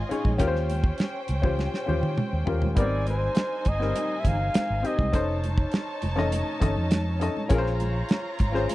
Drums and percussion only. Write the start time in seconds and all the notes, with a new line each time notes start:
0.11 closed hi-hat
0.25 kick, high conga
0.39 kick, closed hi-hat
0.56 snare
0.70 closed hi-hat, muted conga
0.84 kick
0.98 snare, closed hi-hat, high conga
1.28 closed hi-hat, muted conga
1.43 kick, low conga
1.59 snare, muted conga
1.74 snare
1.89 muted conga, low conga
2.03 high tom
2.18 mid tom, high conga
2.47 floor tom
2.62 floor tom, high conga
2.77 kick, closed hi-hat
3.07 closed hi-hat, muted conga
3.35 snare, closed hi-hat, high conga
3.65 kick, closed hi-hat, muted conga
3.81 snare
3.96 closed hi-hat, muted conga
4.25 kick, closed hi-hat, muted conga, low conga
4.54 snare, closed hi-hat, high conga
4.85 closed hi-hat
4.99 kick, high conga
5.13 kick, closed hi-hat
5.44 closed hi-hat, muted conga
5.58 kick
5.72 snare, closed hi-hat, high conga
6.02 closed hi-hat, muted conga
6.17 snare, low conga
6.32 closed hi-hat, muted conga
6.61 kick, closed hi-hat, muted conga, low conga
6.91 snare, closed hi-hat, high conga
7.21 closed hi-hat
7.37 high conga
7.50 kick, closed hi-hat
7.66 snare
7.80 closed hi-hat, muted conga
8.09 snare, closed hi-hat, high conga
8.39 kick, closed hi-hat, muted conga
8.55 snare
8.69 closed hi-hat, muted conga